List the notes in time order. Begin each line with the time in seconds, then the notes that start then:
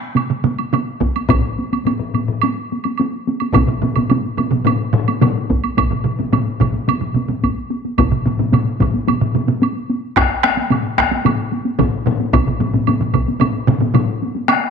0.15 taiko mid, taiko high, high woodblock
0.30 taiko mid
0.44 taiko mid, taiko high
0.58 taiko high, high woodblock
0.73 taiko mid, taiko high, high woodblock
1.00 taiko, taiko mid, taiko high
1.16 taiko high, high woodblock
1.29 taiko, taiko low-mid, taiko high, high woodblock
1.58 taiko high
1.73 taiko high, high woodblock
1.85 taiko low-mid, taiko high, high woodblock
1.99 taiko low-mid
2.14 taiko low-mid, taiko high, high woodblock
2.28 taiko low-mid
2.42 taiko high, high woodblock
2.72 taiko high
2.84 taiko high, high woodblock
2.98 taiko high, high woodblock
3.27 taiko high
3.40 taiko high, high woodblock
3.53 taiko, taiko low-mid, taiko mid, taiko high, high woodblock
3.67 taiko low-mid, taiko mid
3.82 taiko low-mid, taiko mid, taiko high
3.96 taiko low-mid, taiko mid, taiko high, high woodblock
4.09 taiko low-mid, taiko mid, taiko high, high woodblock
4.38 taiko low-mid, taiko mid, taiko high, high woodblock
4.51 taiko low-mid, taiko mid, taiko high
4.65 taiko low-mid, taiko mid, taiko high, high woodblock
4.93 taiko low-mid, taiko mid
5.08 taiko high, high woodblock
5.21 taiko low-mid, taiko mid, taiko high, high woodblock
5.50 taiko, taiko high
5.63 taiko high, high woodblock
5.77 taiko, taiko low-mid, taiko mid, taiko high, high woodblock
5.91 taiko low-mid, taiko mid
6.05 taiko low-mid, taiko mid
6.19 taiko low-mid, taiko mid, taiko high
6.33 taiko low-mid, taiko mid, taiko high, high woodblock
6.60 taiko, taiko low-mid, taiko mid, taiko high, high woodblock
6.74 taiko high
6.88 taiko low-mid, taiko mid, taiko high, high woodblock
7.01 taiko low-mid, taiko mid
7.14 taiko low-mid, taiko mid, taiko high
7.29 taiko low-mid, taiko mid, taiko high
7.44 taiko, taiko high, high woodblock
7.71 taiko high
7.85 taiko high
7.98 taiko, taiko low-mid, taiko mid, taiko high, high woodblock
8.12 taiko low-mid, taiko mid
8.25 taiko low-mid, taiko mid, taiko high
8.39 taiko low-mid, taiko mid, taiko high
8.52 taiko low-mid, taiko mid, taiko high, high woodblock
8.80 taiko, taiko low-mid, taiko mid, taiko high, high woodblock
8.94 taiko high
9.08 taiko low-mid, taiko mid, taiko high, high woodblock
9.21 taiko low-mid, taiko mid
9.35 taiko low-mid, taiko mid, taiko high
9.48 taiko low-mid, taiko mid, taiko high
9.62 taiko high, high woodblock
9.90 taiko high
10.16 taiko rim, taiko, taiko high, high woodblock
10.43 taiko rim, taiko high
10.57 taiko high
10.71 taiko low-mid, taiko mid, taiko high, high woodblock
10.98 taiko rim, taiko, taiko high, high woodblock
11.12 taiko high
11.25 taiko low-mid, taiko mid, taiko high, high woodblock
11.52 taiko high
11.65 taiko high
11.79 taiko, taiko low-mid, taiko mid, taiko high, high woodblock
12.06 taiko low-mid, taiko mid, taiko high
12.20 taiko high
12.33 taiko, taiko low-mid, taiko mid, taiko high, high woodblock
12.47 taiko low-mid, taiko mid
12.60 taiko low-mid, taiko mid, taiko high
12.74 taiko low-mid, taiko mid, taiko high
12.87 taiko low-mid, taiko mid, taiko high, high woodblock
13.01 taiko low-mid, taiko mid
13.14 taiko, taiko low-mid, taiko mid, taiko high, high woodblock
13.28 taiko high
13.40 taiko low-mid, taiko mid, taiko high, high woodblock
13.67 taiko low-mid, taiko mid, taiko high
13.81 taiko low-mid, taiko mid, taiko high
13.94 taiko low-mid, taiko mid, taiko high, high woodblock
14.22 taiko high
14.35 taiko high
14.48 taiko rim, taiko high, high woodblock